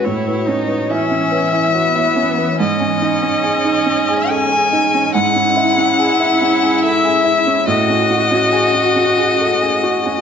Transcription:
<<
  \new Staff \with { instrumentName = "Violin" } { \time 3/4 \key cis \minor \tempo 4 = 71 cis''4 e''2 | dis''2 gis''4 | fis''2 e''4 | dis''2. | }
  \new Staff \with { instrumentName = "Ambient pad" } { \time 3/4 \key cis \minor << { cis''2. | dis''2. | e''2. | fis''2. | } \\ { <e b>2. | <cis' gis'>2.~ | <cis' gis'>2. | <cis' gis'>2. | } >> }
  \new Staff \with { instrumentName = "Upright piano" } { \time 3/4 \key cis \minor a,16 b16 cis'16 b16 e'16 cis'16 b16 e'16 fis'16 e'16 cis'16 b16 | gis,16 cis'16 dis'16 cis'16 gis'16 dis'16 cis'16 gis'16 a'16 gis'16 dis'16 cis'16 | gis,16 cis'16 e'16 cis'16 gis'16 e'16 cis'16 gis'16 a'16 gis'16 e'16 cis'16 | a,16 cis'16 fis'16 cis'16 gis'16 fis'16 cis'16 gis'16 a'16 gis'16 fis'16 cis'16 | }
  \new Staff \with { instrumentName = "Viola" } { \time 3/4 \key cis \minor e'8 dis'8 cis'4 b4 | cis'2. | e'2. | fis'2. | }
>>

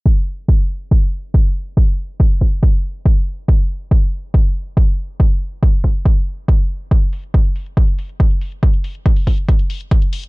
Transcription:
\new DrumStaff \with { instrumentName = "Drums" } \drummode { \time 4/4 \tempo 4 = 140 bd4 bd4 bd4 bd4 | bd4 bd8 bd8 bd4 bd4 | bd4 bd4 bd4 bd4 | bd4 bd8 bd8 bd4 bd4 |
<hh bd>16 hh16 hho16 hh16 <hh bd>16 hh16 hho16 hh16 <hh bd>16 hh16 hho16 hh16 <hh bd>16 hh16 hho16 hh16 | <hh bd>16 hh16 hho16 hh16 <hh bd>16 hho16 <hho bd>16 hh16 <hh bd>16 hh16 hho16 hh16 <hh bd>16 hh16 hho16 hh16 | }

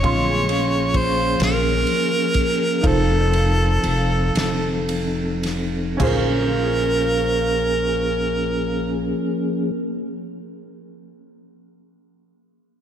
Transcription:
<<
  \new Staff \with { instrumentName = "Harmonica" } { \time 12/8 \key bes \minor \tempo 4. = 35 des''4 c''8 bes'4. a'2 r4 | bes'1. | }
  \new Staff \with { instrumentName = "Upright piano" } { \time 12/8 \key bes \minor <des' f' aes' c'''>2. <ees' f' a' c''>2. | <des' f' aes' c''>1. | }
  \new Staff \with { instrumentName = "Tonewheel organ" } { \time 12/8 \key bes \minor <d ges a ces'>8 <f bes des' aes'>2~ <f bes des' aes'>8 <f c' ees' a'>2. | <d ges bes aes'>8 <f bes des' aes'>1~ <f bes des' aes'>4. | }
  \new Staff \with { instrumentName = "Upright bass" } { \clef bass \time 12/8 \key bes \minor bes,,4. bes,,8 r4 f,,4 f,,8 f,,4. | bes,,1. | }
  \new DrumStaff \with { instrumentName = "Drums" } \drummode { \time 12/8 <bd cymr>8 cymr8 <bd cymr>8 <cymr sn>8 cymr8 <bd cymr>8 <bd cymr>8 cymr8 cymr8 <cymr sn>8 cymr8 <cymr sn>8 | <cymc bd tomfh>4. r4. r4. r4. | }
>>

